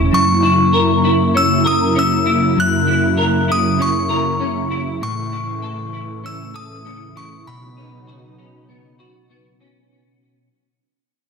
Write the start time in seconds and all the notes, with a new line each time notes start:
Already playing: E1 A2 C#4 E4 A4
0.11 F#2 C#3 F#3 A#3 C#6
0.42 E4
0.73 A#4
1.04 E4
1.34 C#4 E6
1.65 A#4 D#6
1.95 C#4 E6
2.26 E4
2.56 F#2 F#6
2.87 E4
3.17 A#4
3.48 E4 D#6
3.79 C#4 C#6
4.09 A#4
4.40 C#4
4.70 E4
5.01 A2 E3 A3 C#6
5.32 E4
5.62 A4
5.93 E4
6.24 C#4 E6
6.54 A4 D#6
6.85 C#4
7.16 E4 C#6
7.46 B2 C#3 F#3 B3 D#4 B5
7.77 C#4
8.07 F#4
8.38 C#4
8.69 B3
8.99 F#4
9.30 B3
9.60 C#4